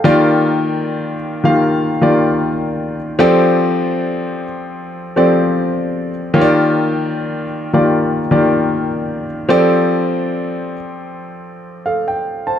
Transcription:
Already playing: A4 F5
0.04 D#3 A#3 F4 G4 D5
1.44 D#3 A#3 F4 G4 F5
2.01 D#3 A#3 F4 G4 D5
3.19 F3 C4 G4 A4 D5
5.16 F3 C4 G4 A4 D5
6.34 D#3 A#3 F4 G4 C#5
6.41 D5
7.73 D#3 A#3 F4 G4 D5
8.31 D#3 A#3 F4 G4 D5
9.49 F3 C4 G4 A4 D5
11.86 A4 F5
12.08 G5
12.47 C5 A5

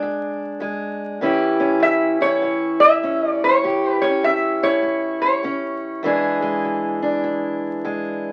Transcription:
Already playing: G#3 D4 G#4
0.02 E2
0.60 E2 G#3
1.21 A2 E3 C#4 E4 G4
1.60 C#4
1.80 A2 E5
2.21 E4 C#5
2.42 A2
2.80 E5
3.03 A2 C#4
3.28 D5
3.44 C#5
3.63 A2 G4
3.90 B4
4.02 C#4 C#5
4.23 A2 E5
4.63 E4 C#5
4.82 A2
5.22 C#5
5.43 A2 C#4
6.03 E2 E3 G#3 D4 G#4
6.42 G#3
6.65 E2
7.02 D4
7.24 E2
7.84 E2 G#3

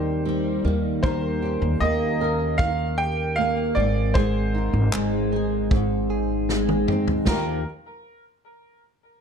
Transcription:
Already playing: D#2 D#3 G3 C4 D#4 G4 C5
0.25 G3 C4
0.65 D#2 D#3 A#3
1.03 D#3 A#3 G4 A#4 C5, kick
1.42 C#4 G4
1.62 D#2
1.80 D#2 A#3 G4 D#5
2.20 C#4 A#4
2.58 D#3 A#3 F5, kick
2.98 G4 G5
3.36 A#3 F5
3.75 G#1 G#2 C4 D5
4.14 G#2 C4 G#4 C5, kick
4.54 D#4
4.74 G#1
4.93 G#1 G#3 G#4, clap
5.32 D#4 G#4
5.71 G#2 C4, kick
6.10 G#4
6.49 G#3 C4, snare
6.69 high tom
6.88 C4 D#4, mid tom
7.08 floor tom
7.27 D#2 D#3 F3 A#3 D#4 G4 A#4, kick, snare, china

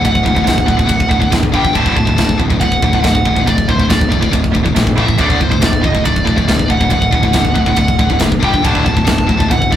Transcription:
0.05 D1 D2 A2 F#5, kick, ride bell
0.15 kick
0.25 D1 D2 A2, kick
0.35 D2 A2, kick
0.44 D1 D2 A2, kick, ride bell
0.48 snare
0.58 kick
0.66 D2 A2, kick
0.77 D2 A2, kick
0.87 D1 D2 A2, kick, ride bell
1.00 kick
1.09 D2 A2, kick
1.20 D2 A2, kick
1.32 D1 D2 A2, kick, snare, ride bell
1.43 kick
1.53 G1 G2 D3 G3 G5, kick
1.65 G2 D3, kick
1.74 D1 D2 A2 D3 A5, kick, ride bell
1.86 kick
1.96 D1 D2 A2 A5, kick
2.07 D2 A2, kick
2.18 D1 D2 A2, kick, snare, ride bell
2.29 kick
2.39 D1 D2 A2, kick
2.50 D2 A2, kick
2.60 D1 D2 A2 F#5, kick, ride bell
2.72 kick
2.82 D1 D2 A2, kick
2.93 D2 A2, kick
3.03 D1 D2 A2 F#5, kick, snare, ride bell
3.15 kick
3.25 D1 D2 A2, kick
3.35 D2 A2, kick
3.46 D1 D2 A2 D5, kick, ride bell
3.58 kick
3.68 D1 D2 A2 C5, kick
3.78 D2 A2, kick
3.89 D1 D2 A2 D5, kick, snare, ride bell
4.01 kick
4.09 D2 A2, kick
4.20 D2 A2, kick
4.32 D1 D2 A2, kick, ride bell
4.44 kick
4.52 D2 A2, kick
4.63 D2 A2, kick
4.75 A#1 D2 A2, kick, snare, ride bell
4.87 kick
4.96 A1 A2 E3 A3, kick
5.00 E5
5.07 A2 E3, kick
5.18 D1 D2 A2 D3 D5, kick, ride bell
5.30 kick
5.40 D1 D2 A2 C5, kick
5.50 D2 A2, kick
5.61 D1 D2 A2 D5, kick, snare, ride bell
5.73 kick
5.81 D1 D2 A2 D#5, kick
5.92 D2 A2, kick
6.04 D1 D2 A2 D5, kick, ride bell
6.16 kick
6.25 D1 D2 A2, kick
6.36 D2 A2, kick
6.48 D1 D2 A2, kick, snare, ride bell
6.59 kick
6.70 D1 D2 A2 F#5, kick
6.81 D2 A2, kick
6.90 D1 D2 A2 F#5, kick, ride bell
7.02 kick
7.12 D1 D2 A2, kick
7.23 D2 A2, kick
7.33 D1 D2 A2, kick, snare, ride bell
7.45 kick
7.55 D2 A2, kick
7.66 D2 A2, kick
7.76 D1 D2 A2, kick, ride bell
7.88 kick
7.99 D2 A2, kick
8.10 D2 A2, kick
8.20 F#1 D2 A2, kick, snare, ride bell
8.32 kick
8.42 G1 G2 D3 G3 G5, kick
8.54 G2 D3, kick
8.64 D1 D2 A2 D3 A5, kick, ride bell
8.75 kick
8.85 D1 D2 A2 A5, kick
8.97 D2 A2, kick
9.07 D1 D2 A2, kick, snare, ride bell
9.18 kick
9.28 D1 D2 A2, kick
9.39 D2 A2, kick
9.51 D1 D2 A2 F#5, kick, ride bell
9.62 kick
9.72 D1 D2 A2 D5, kick

